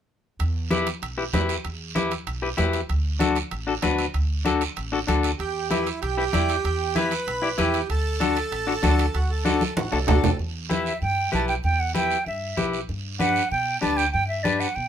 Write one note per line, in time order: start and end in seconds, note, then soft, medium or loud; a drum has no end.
0.39 0.90 E2 medium
0.39 high conga soft
0.39 high timbale medium
0.39 long guiro medium
0.71 0.87 E4 medium
0.71 0.87 G4 medium
0.71 0.88 B4 medium
0.71 high conga medium
0.71 high timbale medium
0.71 short guiro medium
0.87 high timbale medium
0.87 short guiro medium
1.02 1.27 B1 medium
1.02 high conga soft
1.02 high timbale medium
1.02 long guiro medium
1.18 1.23 E4 medium
1.18 1.23 G4 medium
1.18 1.24 B4 medium
1.33 1.58 E2 loud
1.33 1.55 E4 medium
1.33 1.55 G4 medium
1.33 1.56 B4 medium
1.33 high conga medium
1.33 high timbale medium
1.33 low timbale medium
1.33 short guiro medium
1.49 high timbale medium
1.49 short guiro medium
1.65 2.15 E2 medium
1.65 high conga soft
1.65 high timbale medium
1.65 long guiro medium
1.95 2.12 E4 medium
1.95 2.12 G4 medium
1.95 2.12 B4 medium
1.95 high conga medium
1.95 high timbale medium
1.95 short guiro medium
2.11 high timbale medium
2.11 short guiro medium
2.27 2.52 B1 medium
2.27 high conga soft
2.27 high timbale medium
2.27 long guiro medium
2.42 2.48 E4 medium
2.42 2.48 G4 medium
2.42 2.48 B4 medium
2.57 2.84 E2 medium
2.57 2.80 E4 medium
2.57 2.80 G4 medium
2.57 2.80 B4 medium
2.57 high conga medium
2.57 high timbale medium
2.57 low timbale medium
2.57 short guiro medium
2.73 high timbale medium
2.73 short guiro medium
2.89 3.40 D2 medium
2.89 high conga soft
2.89 high timbale medium
2.89 long guiro medium
3.19 3.37 D4 medium
3.19 3.37 F#4 medium
3.19 3.37 A4 medium
3.19 high conga medium
3.19 high timbale medium
3.19 short guiro medium
3.36 high timbale medium
3.36 short guiro medium
3.51 3.77 A1 medium
3.51 high conga soft
3.51 high timbale medium
3.51 long guiro medium
3.67 3.73 D4 medium
3.67 3.73 F#4 medium
3.67 3.73 A4 medium
3.82 4.08 D2 medium
3.82 4.05 D4 medium
3.82 4.05 F#4 medium
3.82 4.05 B4 medium
3.82 high conga medium
3.82 high timbale medium
3.82 low timbale medium
3.82 short guiro medium
3.98 high timbale medium
3.98 short guiro medium
4.14 4.64 D2 medium
4.14 high conga soft
4.14 high timbale medium
4.14 long guiro medium
4.45 4.62 D4 medium
4.45 4.62 F#4 medium
4.45 4.62 A4 medium
4.45 high conga medium
4.45 high timbale medium
4.45 short guiro medium
4.61 high timbale medium
4.61 short guiro medium
4.76 5.02 A1 medium
4.76 high conga soft
4.76 high timbale medium
4.76 long guiro medium
4.92 4.98 D4 medium
4.92 4.98 F#4 medium
4.92 4.98 A4 medium
5.07 5.33 D2 medium
5.07 5.30 D4 medium
5.07 5.30 F#4 medium
5.07 5.30 A4 medium
5.07 high conga medium
5.07 high timbale medium
5.07 short guiro medium
5.23 high timbale medium
5.23 short guiro medium
5.39 5.90 E2 medium
5.39 5.68 G4 medium
5.39 high conga soft
5.39 high timbale medium
5.39 long guiro medium
5.70 6.00 E4 medium
5.70 5.87 E4 medium
5.70 5.87 G4 medium
5.70 5.88 B4 medium
5.70 high conga medium
5.70 high timbale medium
5.70 short guiro medium
5.86 high timbale medium
5.86 short guiro medium
6.02 6.27 B1 medium
6.02 6.16 G4 medium
6.02 high conga soft
6.02 high timbale medium
6.02 long guiro medium
6.17 6.23 E4 medium
6.17 6.23 G4 medium
6.17 6.98 G4 loud
6.17 6.23 B4 medium
6.33 6.59 E2 medium
6.33 6.55 E4 medium
6.33 6.55 G4 medium
6.33 6.56 D5 medium
6.33 high conga medium
6.33 high timbale medium
6.33 short guiro medium
6.49 high timbale medium
6.49 short guiro medium
6.65 7.15 E2 medium
6.65 high conga soft
6.65 high timbale medium
6.65 long guiro medium
6.95 7.12 E4 medium
6.95 7.12 G4 medium
6.95 7.60 B4 loud
6.95 7.13 B4 medium
6.95 high conga medium
6.95 high timbale medium
6.95 short guiro medium
7.11 high timbale medium
7.11 short guiro medium
7.27 7.52 B1 medium
7.27 high conga soft
7.27 high timbale medium
7.27 long guiro medium
7.42 7.48 E4 medium
7.42 7.48 G4 medium
7.42 7.48 D5 medium
7.58 7.83 E2 loud
7.58 7.80 E4 medium
7.58 7.88 G4 medium
7.58 7.80 G4 medium
7.58 7.80 B4 medium
7.58 high conga medium
7.58 high timbale medium
7.58 short guiro medium
7.74 high timbale medium
7.74 short guiro medium
7.89 8.40 D2 medium
7.89 9.19 A4 loud
7.89 high conga soft
7.89 high timbale medium
7.89 long guiro medium
8.20 8.37 D4 medium
8.20 8.37 F#4 medium
8.20 8.37 A4 medium
8.20 high conga medium
8.20 high timbale medium
8.20 short guiro medium
8.36 high timbale medium
8.36 short guiro medium
8.52 8.77 A1 medium
8.52 high conga soft
8.52 high timbale medium
8.52 long guiro medium
8.67 8.73 D4 medium
8.67 8.73 F#4 medium
8.67 8.73 A4 medium
8.83 9.08 D2 medium
8.83 9.05 D4 medium
8.83 9.05 F#4 medium
8.83 9.05 A4 medium
8.83 high conga medium
8.83 high timbale medium
8.83 low timbale medium
8.83 short guiro medium
8.99 high timbale medium
8.99 short guiro medium
9.14 9.64 D2 medium
9.14 9.31 F#4 medium
9.14 high conga soft
9.14 high timbale medium
9.14 long guiro medium
9.30 9.74 A4 medium
9.45 9.62 D4 medium
9.45 9.62 F#4 medium
9.45 9.62 A4 medium
9.45 high conga medium
9.45 high timbale medium
9.45 short guiro medium
9.61 high conga medium
9.61 short guiro medium
9.77 9.89 A1 medium
9.77 9.91 F#4 medium
9.77 high conga medium
9.77 high timbale medium
9.77 long guiro medium
9.92 10.07 C2 medium
9.92 9.98 D4 medium
9.92 9.98 F#4 medium
9.92 9.98 A4 medium
9.92 10.06 A4 medium
9.92 low timbale medium
10.07 10.22 D2 medium
10.07 10.29 D4 medium
10.07 10.30 F#4 medium
10.07 10.37 A4 medium
10.07 10.30 A4 medium
10.07 low conga medium
10.07 low timbale loud
10.07 short guiro medium
10.24 10.38 E2 medium
10.24 low conga loud
10.24 low timbale medium
10.24 short guiro medium
10.39 10.89 E2 loud
10.39 high conga soft
10.39 long guiro medium
10.69 10.92 E4 medium
10.69 10.92 G4 medium
10.69 10.92 B4 medium
10.69 11.00 E5 medium
10.69 high conga medium
10.69 short guiro medium
10.86 short guiro medium
11.02 11.27 G2 medium
11.02 11.31 G5 medium
11.02 high conga soft
11.02 long guiro medium
11.32 11.58 B1 medium
11.32 11.54 E4 medium
11.32 11.54 G4 medium
11.32 11.55 B4 medium
11.32 11.48 A5 medium
11.32 high conga medium
11.32 short guiro medium
11.48 11.54 G5 medium
11.48 short guiro medium
11.64 12.14 E2 loud
11.64 11.82 G5 medium
11.64 high conga soft
11.64 long guiro medium
11.80 11.95 F#5 medium
11.95 12.17 E4 medium
11.95 12.17 G4 medium
11.95 12.17 B4 medium
11.95 12.25 G5 loud
11.95 high conga medium
11.95 short guiro medium
12.11 short guiro medium
12.26 12.52 G2 medium
12.26 12.70 E5 medium
12.26 high conga soft
12.26 long guiro medium
12.57 12.83 B1 loud
12.57 12.79 E4 medium
12.57 12.79 G4 medium
12.57 12.80 B4 medium
12.57 high conga medium
12.57 short guiro medium
12.73 short guiro medium
12.89 13.39 G2 loud
12.89 high conga soft
12.89 long guiro medium
13.19 13.42 D4 medium
13.19 13.42 G4 medium
13.19 13.42 B4 medium
13.19 13.49 F#5 loud
13.19 high conga medium
13.19 short guiro medium
13.36 short guiro medium
13.51 13.76 B2 medium
13.51 13.80 G5 medium
13.51 high conga soft
13.51 long guiro medium
13.81 14.08 D2 loud
13.81 14.04 D4 medium
13.81 14.04 G4 medium
13.81 14.04 B4 medium
13.81 13.98 A5 loud
13.81 high conga medium
13.81 short guiro medium
13.97 14.11 G5 loud
13.97 short guiro medium
14.12 14.64 G2 loud
14.12 14.27 G5 medium
14.12 high conga soft
14.12 long guiro medium
14.28 14.45 E5 medium
14.43 14.67 D4 medium
14.43 14.67 G4 medium
14.43 14.67 B4 medium
14.43 14.61 D5 medium
14.43 high conga medium
14.43 short guiro medium
14.60 14.77 F#5 medium
14.60 short guiro medium
14.75 14.88 B2 medium
14.75 14.88 G5 medium
14.75 high conga soft
14.75 long guiro medium